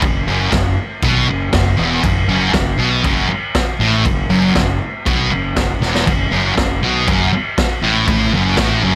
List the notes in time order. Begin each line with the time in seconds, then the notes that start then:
0.02 F#1 F#2, kick, crash
0.27 F#1 F#2
0.52 F#1 F#2, kick, snare, crash
1.02 B1 B2, kick, crash
1.27 F#1 F#2
1.53 F#1 F#2, kick, snare, crash
1.78 E1 E2
2.03 F#1 F#2, kick, crash
2.28 F#1 F#2
2.54 F#1 F#2, kick, snare, crash
2.78 B1 B2
3.04 F#1 F#2, kick, crash
3.29 muted fingered electric bass stroke, muted distorted electric guitar stroke
3.55 kick, snare, crash
3.80 A1 A2
4.05 F#1 F#2, kick, crash
4.29 F#1 F#2
4.55 F#1 F#2, kick, snare, crash
5.06 B1 B2, kick, crash
5.29 F#1 F#2
5.56 F#1 F#2, kick, snare, crash
5.80 E1 E2, snare
5.95 snare
6.07 F#1 F#2, kick, crash
6.31 F#1 F#2
6.57 F#1 F#2, kick, snare, crash
6.81 B1 B2
7.07 F#1 F#2, kick, crash
7.31 muted fingered electric bass stroke, muted distorted electric guitar stroke
7.58 kick, snare, crash
7.81 A1 A2
8.08 A1 A2, kick, crash
8.33 F#1 F#2
8.57 A1 A2, kick, snare, crash
8.82 F#1 F#2